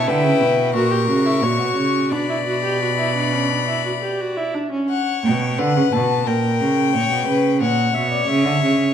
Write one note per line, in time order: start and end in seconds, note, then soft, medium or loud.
0.00 0.73 E4 medium
0.00 0.10 A5 medium
0.07 0.26 D3 medium
0.07 0.74 B4 medium
0.07 0.74 G5 medium
0.24 0.42 C#3 medium
0.41 0.75 B2 medium
0.74 1.09 A#2 medium
0.74 0.93 F#4 medium
0.74 1.45 A#4 medium
0.74 2.14 C#6 medium
0.91 1.08 G4 medium
1.08 1.44 C#3 medium
1.08 1.27 F#4 medium
1.25 1.44 E4 medium
1.42 1.61 A#2 medium
1.42 2.13 F#4 medium
1.42 2.11 C#5 medium
1.59 1.76 B2 medium
1.76 2.13 C#3 medium
2.11 4.55 B2 medium
2.11 2.29 D4 medium
2.11 4.51 D5 medium
2.11 4.55 B5 medium
2.29 2.36 E4 medium
2.46 2.63 F#4 medium
2.64 2.81 G4 medium
2.82 2.88 F#4 medium
2.98 3.15 E4 medium
3.15 3.34 D4 medium
3.33 3.52 C#4 medium
3.50 3.67 D4 medium
3.67 3.84 E4 medium
3.85 3.92 F#4 medium
4.02 4.22 G4 medium
4.20 4.38 F#4 medium
4.37 4.55 E4 medium
4.54 4.71 D4 medium
4.71 4.89 C#4 medium
4.89 5.60 C#5 medium
4.89 5.22 F#5 medium
5.25 5.60 B2 medium
5.25 5.60 G5 medium
5.58 5.76 D3 medium
5.58 6.26 B4 medium
5.58 5.93 F#5 medium
5.76 5.83 C#3 medium
5.92 6.29 B2 medium
5.92 6.28 A5 medium
6.26 6.62 A#2 medium
6.26 6.93 A#4 medium
6.26 7.61 G5 medium
6.61 6.96 C#3 medium
6.94 7.10 A#2 medium
6.94 7.26 C#5 medium
7.10 7.27 B2 medium
7.27 7.62 C#3 medium
7.27 7.60 B4 medium
7.61 7.94 A#2 loud
7.61 8.94 C#5 medium
7.61 7.95 F#5 medium
7.94 8.28 B2 medium
7.94 8.11 E5 medium
8.11 8.29 D5 medium
8.28 8.46 C#3 loud
8.28 8.94 E5 medium
8.45 8.61 D3 medium
8.62 8.94 C#3 medium